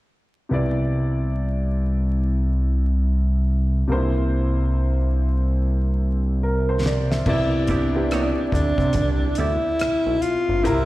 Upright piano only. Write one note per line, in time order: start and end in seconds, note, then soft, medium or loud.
0.49 3.84 C3 medium
0.49 3.84 B3 medium
0.49 3.85 E4 medium
0.54 3.86 D5 medium
3.88 7.22 C3 medium
3.88 7.22 A#3 medium
3.88 3.97 D4 soft
3.92 5.97 C5 medium
3.97 7.26 E4 medium
6.43 6.67 A#4 medium
6.69 6.84 C5 medium
6.86 7.09 D5 medium
7.11 7.50 E5 soft
7.26 7.90 C3 medium
7.26 7.90 B3 medium
7.26 7.90 E4 medium
7.26 7.91 D5 medium
7.94 9.51 C3 medium
7.94 9.52 B3 medium
7.94 9.52 E4 medium
7.94 9.52 G4 medium
10.63 10.85 C3 medium
10.63 10.85 C4 medium
10.63 10.85 E4 medium
10.63 10.85 A#4 medium